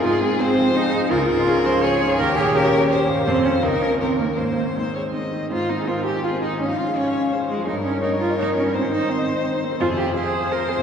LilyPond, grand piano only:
\new Staff \with { instrumentName = "Grand piano" } { \time 3/4 \key f \minor \tempo 4 = 167 aes,8 aes8 <c' aes'>8 f8 <c' aes'>8 aes8 | \key aes \major des,8 aes,8 <des' aes'>8 f8 <des' aes'>8 aes,8 | ees,8 bes,8 <des' g'>8 bes8 <des' g'>8 bes,8 | f,8 <c' f'>8 des,8 <bes f'>8 ees,8 <des' ees'>8 |
aes,8 ees8 <c' ees'>8 aes8 <c' ees'>8 ees8 | aes,16 ees16 c'16 aes'16 c'16 c''16 aes''16 c''16 aes'16 c'16 aes16 ees16 | aes,16 f16 f'16 aes'16 f'16 f''16 aes''16 f''16 aes'16 f'16 aes16 f16 | g,16 g16 ees'16 bes'16 des''16 ees''16 bes''16 ees''16 des''16 bes'16 ees'16 g16 |
aes,16 ees16 ees'16 c''16 ees'16 ees''16 c'''16 ees''16 c''16 ees'16 c'16 ees16 | \key f \minor f,16 c16 f'16 c''16 f'16 f''16 c'''16 f''16 c''16 f'16 c'16 c16 | }